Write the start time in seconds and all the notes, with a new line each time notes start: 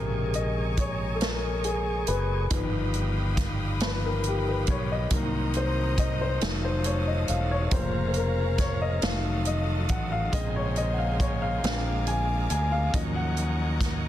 Already playing: A#1 C3 C#3 G#3 G#4 A#4 C#5 G#5 A#5 C#6
0.34 D#5, closed hi-hat
0.77 C#5, kick, closed hi-hat
1.15 A4
1.21 A#4, snare, closed hi-hat
1.64 G#4, closed hi-hat
2.07 F#1 B4, closed hi-hat
2.49 G1 D#3 F3 G3 B3 D#4 F4 A#4 F5 G5 B5 D#6, kick, closed hi-hat
2.57 B4
2.94 closed hi-hat
3.37 kick, snare, closed hi-hat
3.80 D#3 F3 B3 B4, snare, closed hi-hat
4.05 A#4
4.24 G4, closed hi-hat
4.48 B4
4.67 B1 C#5, kick, closed hi-hat
4.92 D#5
5.10 C2 D#3 F#3 A#3 C4 D#4 A#4 D#5 A#5 C6 D#6, kick, closed hi-hat
5.54 C5, closed hi-hat
5.98 D#5, kick, closed hi-hat
6.21 C5
6.41 F1 D#3 F#3 A3 D#4 F4 G#4 F5 A5 D#6, snare, closed hi-hat
6.48 A4
6.64 C5
6.84 C#5, closed hi-hat
7.08 D#5
7.28 E1 F5, closed hi-hat
7.51 C#5
7.65 C#5
7.71 F1 C#3 F3 A#3 C#4 A#4 C5 A#5, kick, closed hi-hat
8.08 C5
8.14 A#4, closed hi-hat
8.58 C#5, kick, snare, closed hi-hat
8.82 D#5
9.02 F1 D#3 F#3 A3 D#4 F4 A4 D#5 F5 A5 D#6, snare, closed hi-hat
9.45 D#5, closed hi-hat
9.89 A1 F#5, kick, closed hi-hat
10.12 F5
10.32 A#1 C#3 G#3 A#3 C4 G#4 A#4 C5 D#5 G#5 A#5 C6, kick, closed hi-hat
10.38 C5
10.56 C#5
10.76 D#5, closed hi-hat
10.93 F#5
10.98 F5
11.20 C#5, kick, closed hi-hat
11.42 F5
11.63 A#1 D3 G#3 A#3 C4 F4 G#4 D5 F5 D6, snare, closed hi-hat
12.07 G#5, closed hi-hat
12.50 D2 G#5, closed hi-hat
12.72 F5
12.94 D#2 F3 F#3 A#3 C#4 D#4 C#5 D#5 F#5, kick, closed hi-hat
13.16 F#5
13.37 closed hi-hat
13.81 kick, snare, closed hi-hat